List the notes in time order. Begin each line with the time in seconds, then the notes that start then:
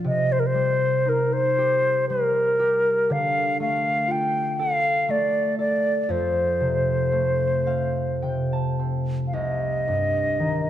Already playing: D4 F4
0.04 C3 D#5
0.32 C5
0.40 A#4
0.46 C5
0.54 G3
1.05 D#4 A#4
1.33 C5
1.58 G4
2.09 G3 A#4
2.59 G4
3.10 D3 F5
3.60 A3 F5
4.08 F4 G5
4.59 A4 F5
5.08 A3 D5
5.59 A4 D5
6.04 D5
6.09 F2 C5
6.60 C3
7.12 A3
7.67 C4 F5
8.22 C3 G5
8.53 A5
8.79 C4
9.27 F5
9.33 C2 D#5
9.88 G2
10.40 D#3